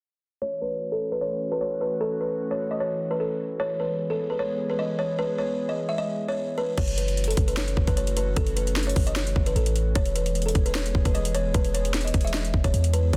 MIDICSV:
0, 0, Header, 1, 5, 480
1, 0, Start_track
1, 0, Tempo, 397351
1, 505, Time_signature, 4, 2, 24, 8
1, 15908, End_track
2, 0, Start_track
2, 0, Title_t, "Kalimba"
2, 0, Program_c, 0, 108
2, 504, Note_on_c, 0, 73, 101
2, 685, Note_off_c, 0, 73, 0
2, 745, Note_on_c, 0, 71, 73
2, 1090, Note_off_c, 0, 71, 0
2, 1112, Note_on_c, 0, 69, 79
2, 1292, Note_off_c, 0, 69, 0
2, 1352, Note_on_c, 0, 71, 75
2, 1437, Note_off_c, 0, 71, 0
2, 1464, Note_on_c, 0, 73, 77
2, 1810, Note_off_c, 0, 73, 0
2, 1832, Note_on_c, 0, 71, 85
2, 1917, Note_off_c, 0, 71, 0
2, 1944, Note_on_c, 0, 73, 71
2, 2125, Note_off_c, 0, 73, 0
2, 2185, Note_on_c, 0, 71, 83
2, 2366, Note_off_c, 0, 71, 0
2, 2424, Note_on_c, 0, 69, 109
2, 2605, Note_off_c, 0, 69, 0
2, 2665, Note_on_c, 0, 71, 81
2, 3010, Note_off_c, 0, 71, 0
2, 3032, Note_on_c, 0, 73, 80
2, 3213, Note_off_c, 0, 73, 0
2, 3272, Note_on_c, 0, 75, 84
2, 3357, Note_off_c, 0, 75, 0
2, 3386, Note_on_c, 0, 73, 80
2, 3731, Note_off_c, 0, 73, 0
2, 3754, Note_on_c, 0, 71, 78
2, 3838, Note_off_c, 0, 71, 0
2, 3866, Note_on_c, 0, 69, 74
2, 4317, Note_off_c, 0, 69, 0
2, 4345, Note_on_c, 0, 73, 97
2, 4525, Note_off_c, 0, 73, 0
2, 4586, Note_on_c, 0, 71, 70
2, 4931, Note_off_c, 0, 71, 0
2, 4954, Note_on_c, 0, 69, 76
2, 5133, Note_off_c, 0, 69, 0
2, 5193, Note_on_c, 0, 71, 73
2, 5278, Note_off_c, 0, 71, 0
2, 5305, Note_on_c, 0, 73, 80
2, 5650, Note_off_c, 0, 73, 0
2, 5672, Note_on_c, 0, 71, 74
2, 5757, Note_off_c, 0, 71, 0
2, 5785, Note_on_c, 0, 75, 89
2, 5965, Note_off_c, 0, 75, 0
2, 6025, Note_on_c, 0, 73, 85
2, 6205, Note_off_c, 0, 73, 0
2, 6265, Note_on_c, 0, 71, 101
2, 6445, Note_off_c, 0, 71, 0
2, 6505, Note_on_c, 0, 73, 84
2, 6850, Note_off_c, 0, 73, 0
2, 6873, Note_on_c, 0, 75, 83
2, 7053, Note_off_c, 0, 75, 0
2, 7112, Note_on_c, 0, 76, 79
2, 7197, Note_off_c, 0, 76, 0
2, 7226, Note_on_c, 0, 75, 91
2, 7571, Note_off_c, 0, 75, 0
2, 7592, Note_on_c, 0, 73, 80
2, 7924, Note_off_c, 0, 73, 0
2, 7945, Note_on_c, 0, 71, 87
2, 8125, Note_off_c, 0, 71, 0
2, 8185, Note_on_c, 0, 73, 106
2, 8366, Note_off_c, 0, 73, 0
2, 8425, Note_on_c, 0, 71, 74
2, 8770, Note_off_c, 0, 71, 0
2, 8792, Note_on_c, 0, 69, 83
2, 8973, Note_off_c, 0, 69, 0
2, 9033, Note_on_c, 0, 71, 78
2, 9117, Note_off_c, 0, 71, 0
2, 9146, Note_on_c, 0, 73, 80
2, 9491, Note_off_c, 0, 73, 0
2, 9513, Note_on_c, 0, 71, 86
2, 9598, Note_off_c, 0, 71, 0
2, 9626, Note_on_c, 0, 73, 78
2, 9806, Note_off_c, 0, 73, 0
2, 9866, Note_on_c, 0, 71, 85
2, 10046, Note_off_c, 0, 71, 0
2, 10106, Note_on_c, 0, 69, 115
2, 10286, Note_off_c, 0, 69, 0
2, 10345, Note_on_c, 0, 71, 83
2, 10690, Note_off_c, 0, 71, 0
2, 10713, Note_on_c, 0, 73, 84
2, 10893, Note_off_c, 0, 73, 0
2, 10953, Note_on_c, 0, 75, 88
2, 11038, Note_off_c, 0, 75, 0
2, 11066, Note_on_c, 0, 73, 81
2, 11411, Note_off_c, 0, 73, 0
2, 11434, Note_on_c, 0, 71, 83
2, 11518, Note_off_c, 0, 71, 0
2, 11546, Note_on_c, 0, 69, 80
2, 11997, Note_off_c, 0, 69, 0
2, 12025, Note_on_c, 0, 73, 102
2, 12205, Note_off_c, 0, 73, 0
2, 12266, Note_on_c, 0, 71, 73
2, 12611, Note_off_c, 0, 71, 0
2, 12633, Note_on_c, 0, 69, 80
2, 12813, Note_off_c, 0, 69, 0
2, 12874, Note_on_c, 0, 71, 81
2, 12958, Note_off_c, 0, 71, 0
2, 12986, Note_on_c, 0, 73, 79
2, 13331, Note_off_c, 0, 73, 0
2, 13352, Note_on_c, 0, 71, 77
2, 13437, Note_off_c, 0, 71, 0
2, 13465, Note_on_c, 0, 75, 87
2, 13645, Note_off_c, 0, 75, 0
2, 13705, Note_on_c, 0, 73, 85
2, 13885, Note_off_c, 0, 73, 0
2, 13945, Note_on_c, 0, 71, 106
2, 14125, Note_off_c, 0, 71, 0
2, 14185, Note_on_c, 0, 73, 83
2, 14530, Note_off_c, 0, 73, 0
2, 14553, Note_on_c, 0, 75, 83
2, 14733, Note_off_c, 0, 75, 0
2, 14793, Note_on_c, 0, 76, 79
2, 14877, Note_off_c, 0, 76, 0
2, 14905, Note_on_c, 0, 75, 92
2, 15251, Note_off_c, 0, 75, 0
2, 15273, Note_on_c, 0, 73, 80
2, 15604, Note_off_c, 0, 73, 0
2, 15625, Note_on_c, 0, 71, 86
2, 15805, Note_off_c, 0, 71, 0
2, 15866, Note_on_c, 0, 73, 104
2, 15908, Note_off_c, 0, 73, 0
2, 15908, End_track
3, 0, Start_track
3, 0, Title_t, "Analog synth pad"
3, 0, Program_c, 1, 89
3, 506, Note_on_c, 1, 52, 77
3, 506, Note_on_c, 1, 57, 69
3, 506, Note_on_c, 1, 61, 71
3, 506, Note_on_c, 1, 66, 87
3, 4307, Note_off_c, 1, 57, 0
3, 4307, Note_off_c, 1, 61, 0
3, 4307, Note_off_c, 1, 66, 0
3, 4346, Note_on_c, 1, 56, 70
3, 4346, Note_on_c, 1, 59, 75
3, 4346, Note_on_c, 1, 68, 83
3, 8137, Note_off_c, 1, 52, 0
3, 8147, Note_off_c, 1, 56, 0
3, 8147, Note_off_c, 1, 59, 0
3, 8147, Note_off_c, 1, 68, 0
3, 8185, Note_on_c, 1, 52, 79
3, 8185, Note_on_c, 1, 57, 73
3, 8185, Note_on_c, 1, 61, 73
3, 8185, Note_on_c, 1, 66, 86
3, 11987, Note_off_c, 1, 57, 0
3, 11987, Note_off_c, 1, 61, 0
3, 11987, Note_off_c, 1, 66, 0
3, 12025, Note_on_c, 1, 56, 74
3, 12025, Note_on_c, 1, 59, 75
3, 12025, Note_on_c, 1, 68, 87
3, 15827, Note_off_c, 1, 56, 0
3, 15827, Note_off_c, 1, 59, 0
3, 15827, Note_off_c, 1, 68, 0
3, 15866, Note_on_c, 1, 57, 75
3, 15866, Note_on_c, 1, 61, 73
3, 15866, Note_on_c, 1, 66, 88
3, 15908, Note_off_c, 1, 52, 0
3, 15908, Note_off_c, 1, 57, 0
3, 15908, Note_off_c, 1, 61, 0
3, 15908, Note_off_c, 1, 66, 0
3, 15908, End_track
4, 0, Start_track
4, 0, Title_t, "808-style bass"
4, 0, Program_c, 2, 38
4, 8185, Note_on_c, 2, 30, 114
4, 8877, Note_off_c, 2, 30, 0
4, 8906, Note_on_c, 2, 30, 101
4, 9366, Note_off_c, 2, 30, 0
4, 9385, Note_on_c, 2, 30, 101
4, 9507, Note_off_c, 2, 30, 0
4, 9513, Note_on_c, 2, 30, 99
4, 10082, Note_off_c, 2, 30, 0
4, 10106, Note_on_c, 2, 30, 110
4, 10797, Note_off_c, 2, 30, 0
4, 10826, Note_on_c, 2, 30, 103
4, 11286, Note_off_c, 2, 30, 0
4, 11305, Note_on_c, 2, 30, 105
4, 11536, Note_off_c, 2, 30, 0
4, 11545, Note_on_c, 2, 33, 108
4, 12006, Note_off_c, 2, 33, 0
4, 12026, Note_on_c, 2, 28, 109
4, 12717, Note_off_c, 2, 28, 0
4, 12746, Note_on_c, 2, 28, 98
4, 13206, Note_off_c, 2, 28, 0
4, 13225, Note_on_c, 2, 28, 106
4, 13348, Note_off_c, 2, 28, 0
4, 13353, Note_on_c, 2, 28, 107
4, 13833, Note_on_c, 2, 27, 103
4, 13851, Note_off_c, 2, 28, 0
4, 13940, Note_off_c, 2, 27, 0
4, 13946, Note_on_c, 2, 28, 108
4, 14637, Note_off_c, 2, 28, 0
4, 14666, Note_on_c, 2, 28, 98
4, 15127, Note_off_c, 2, 28, 0
4, 15145, Note_on_c, 2, 28, 103
4, 15268, Note_off_c, 2, 28, 0
4, 15273, Note_on_c, 2, 28, 105
4, 15378, Note_off_c, 2, 28, 0
4, 15385, Note_on_c, 2, 40, 102
4, 15846, Note_off_c, 2, 40, 0
4, 15866, Note_on_c, 2, 30, 109
4, 15908, Note_off_c, 2, 30, 0
4, 15908, End_track
5, 0, Start_track
5, 0, Title_t, "Drums"
5, 8185, Note_on_c, 9, 42, 80
5, 8185, Note_on_c, 9, 49, 99
5, 8186, Note_on_c, 9, 36, 119
5, 8305, Note_off_c, 9, 42, 0
5, 8306, Note_off_c, 9, 36, 0
5, 8306, Note_off_c, 9, 49, 0
5, 8307, Note_on_c, 9, 42, 57
5, 8427, Note_off_c, 9, 42, 0
5, 8429, Note_on_c, 9, 42, 90
5, 8549, Note_off_c, 9, 42, 0
5, 8554, Note_on_c, 9, 42, 61
5, 8665, Note_off_c, 9, 42, 0
5, 8665, Note_on_c, 9, 42, 44
5, 8745, Note_off_c, 9, 42, 0
5, 8745, Note_on_c, 9, 42, 56
5, 8825, Note_off_c, 9, 42, 0
5, 8825, Note_on_c, 9, 42, 73
5, 8905, Note_off_c, 9, 42, 0
5, 8905, Note_on_c, 9, 42, 85
5, 8906, Note_on_c, 9, 36, 107
5, 9025, Note_off_c, 9, 42, 0
5, 9027, Note_off_c, 9, 36, 0
5, 9035, Note_on_c, 9, 42, 59
5, 9145, Note_on_c, 9, 38, 123
5, 9149, Note_off_c, 9, 42, 0
5, 9149, Note_on_c, 9, 42, 72
5, 9266, Note_off_c, 9, 38, 0
5, 9270, Note_off_c, 9, 42, 0
5, 9276, Note_on_c, 9, 42, 59
5, 9385, Note_on_c, 9, 36, 92
5, 9397, Note_off_c, 9, 42, 0
5, 9506, Note_off_c, 9, 36, 0
5, 9511, Note_on_c, 9, 42, 56
5, 9512, Note_on_c, 9, 36, 91
5, 9628, Note_off_c, 9, 42, 0
5, 9628, Note_on_c, 9, 42, 70
5, 9633, Note_off_c, 9, 36, 0
5, 9749, Note_off_c, 9, 42, 0
5, 9751, Note_on_c, 9, 42, 78
5, 9865, Note_off_c, 9, 42, 0
5, 9865, Note_on_c, 9, 42, 79
5, 9986, Note_off_c, 9, 42, 0
5, 10105, Note_on_c, 9, 42, 80
5, 10106, Note_on_c, 9, 36, 116
5, 10225, Note_off_c, 9, 42, 0
5, 10226, Note_off_c, 9, 36, 0
5, 10226, Note_on_c, 9, 42, 54
5, 10347, Note_off_c, 9, 42, 0
5, 10348, Note_on_c, 9, 42, 90
5, 10469, Note_off_c, 9, 42, 0
5, 10474, Note_on_c, 9, 42, 59
5, 10585, Note_on_c, 9, 38, 92
5, 10586, Note_off_c, 9, 42, 0
5, 10586, Note_on_c, 9, 42, 44
5, 10665, Note_off_c, 9, 42, 0
5, 10665, Note_on_c, 9, 42, 57
5, 10706, Note_off_c, 9, 38, 0
5, 10745, Note_off_c, 9, 42, 0
5, 10745, Note_on_c, 9, 42, 72
5, 10825, Note_on_c, 9, 46, 83
5, 10826, Note_on_c, 9, 36, 107
5, 10866, Note_off_c, 9, 42, 0
5, 10945, Note_off_c, 9, 46, 0
5, 10947, Note_off_c, 9, 36, 0
5, 10954, Note_on_c, 9, 42, 58
5, 11065, Note_on_c, 9, 38, 119
5, 11069, Note_off_c, 9, 42, 0
5, 11069, Note_on_c, 9, 42, 74
5, 11186, Note_off_c, 9, 38, 0
5, 11189, Note_off_c, 9, 42, 0
5, 11196, Note_on_c, 9, 42, 59
5, 11305, Note_on_c, 9, 36, 93
5, 11316, Note_off_c, 9, 42, 0
5, 11426, Note_off_c, 9, 36, 0
5, 11431, Note_on_c, 9, 42, 59
5, 11548, Note_off_c, 9, 42, 0
5, 11548, Note_on_c, 9, 42, 71
5, 11669, Note_off_c, 9, 42, 0
5, 11671, Note_on_c, 9, 42, 73
5, 11785, Note_off_c, 9, 42, 0
5, 11785, Note_on_c, 9, 42, 80
5, 11906, Note_off_c, 9, 42, 0
5, 12025, Note_on_c, 9, 42, 79
5, 12026, Note_on_c, 9, 36, 117
5, 12145, Note_off_c, 9, 42, 0
5, 12146, Note_off_c, 9, 36, 0
5, 12147, Note_on_c, 9, 42, 57
5, 12267, Note_off_c, 9, 42, 0
5, 12268, Note_on_c, 9, 42, 93
5, 12389, Note_off_c, 9, 42, 0
5, 12394, Note_on_c, 9, 42, 60
5, 12505, Note_off_c, 9, 42, 0
5, 12505, Note_on_c, 9, 42, 42
5, 12585, Note_off_c, 9, 42, 0
5, 12585, Note_on_c, 9, 42, 58
5, 12665, Note_off_c, 9, 42, 0
5, 12665, Note_on_c, 9, 42, 73
5, 12745, Note_off_c, 9, 42, 0
5, 12745, Note_on_c, 9, 42, 84
5, 12746, Note_on_c, 9, 36, 106
5, 12866, Note_off_c, 9, 42, 0
5, 12867, Note_off_c, 9, 36, 0
5, 12875, Note_on_c, 9, 42, 58
5, 12986, Note_on_c, 9, 38, 123
5, 12989, Note_off_c, 9, 42, 0
5, 12989, Note_on_c, 9, 42, 71
5, 13106, Note_off_c, 9, 38, 0
5, 13110, Note_off_c, 9, 42, 0
5, 13116, Note_on_c, 9, 42, 60
5, 13225, Note_on_c, 9, 36, 95
5, 13237, Note_off_c, 9, 42, 0
5, 13346, Note_off_c, 9, 36, 0
5, 13352, Note_on_c, 9, 42, 57
5, 13353, Note_on_c, 9, 36, 94
5, 13469, Note_off_c, 9, 42, 0
5, 13469, Note_on_c, 9, 42, 68
5, 13474, Note_off_c, 9, 36, 0
5, 13590, Note_off_c, 9, 42, 0
5, 13591, Note_on_c, 9, 42, 77
5, 13705, Note_off_c, 9, 42, 0
5, 13705, Note_on_c, 9, 42, 80
5, 13826, Note_off_c, 9, 42, 0
5, 13945, Note_on_c, 9, 42, 81
5, 13946, Note_on_c, 9, 36, 119
5, 14066, Note_off_c, 9, 42, 0
5, 14067, Note_off_c, 9, 36, 0
5, 14067, Note_on_c, 9, 42, 57
5, 14188, Note_off_c, 9, 42, 0
5, 14189, Note_on_c, 9, 42, 86
5, 14310, Note_off_c, 9, 42, 0
5, 14315, Note_on_c, 9, 42, 62
5, 14426, Note_off_c, 9, 42, 0
5, 14426, Note_on_c, 9, 38, 96
5, 14426, Note_on_c, 9, 42, 59
5, 14506, Note_off_c, 9, 42, 0
5, 14506, Note_on_c, 9, 42, 58
5, 14546, Note_off_c, 9, 38, 0
5, 14586, Note_off_c, 9, 42, 0
5, 14586, Note_on_c, 9, 42, 60
5, 14665, Note_on_c, 9, 46, 84
5, 14666, Note_off_c, 9, 42, 0
5, 14666, Note_on_c, 9, 36, 106
5, 14666, Note_on_c, 9, 42, 60
5, 14746, Note_off_c, 9, 42, 0
5, 14746, Note_on_c, 9, 42, 63
5, 14786, Note_off_c, 9, 46, 0
5, 14787, Note_off_c, 9, 36, 0
5, 14826, Note_off_c, 9, 42, 0
5, 14826, Note_on_c, 9, 42, 59
5, 14906, Note_on_c, 9, 38, 123
5, 14909, Note_off_c, 9, 42, 0
5, 14909, Note_on_c, 9, 42, 73
5, 15026, Note_off_c, 9, 38, 0
5, 15030, Note_off_c, 9, 42, 0
5, 15036, Note_on_c, 9, 42, 57
5, 15145, Note_on_c, 9, 36, 94
5, 15157, Note_off_c, 9, 42, 0
5, 15266, Note_off_c, 9, 36, 0
5, 15272, Note_on_c, 9, 42, 58
5, 15273, Note_on_c, 9, 36, 91
5, 15388, Note_off_c, 9, 42, 0
5, 15388, Note_on_c, 9, 42, 72
5, 15394, Note_off_c, 9, 36, 0
5, 15509, Note_off_c, 9, 42, 0
5, 15511, Note_on_c, 9, 42, 77
5, 15626, Note_off_c, 9, 42, 0
5, 15626, Note_on_c, 9, 42, 78
5, 15747, Note_off_c, 9, 42, 0
5, 15865, Note_on_c, 9, 42, 79
5, 15866, Note_on_c, 9, 36, 120
5, 15908, Note_off_c, 9, 36, 0
5, 15908, Note_off_c, 9, 42, 0
5, 15908, End_track
0, 0, End_of_file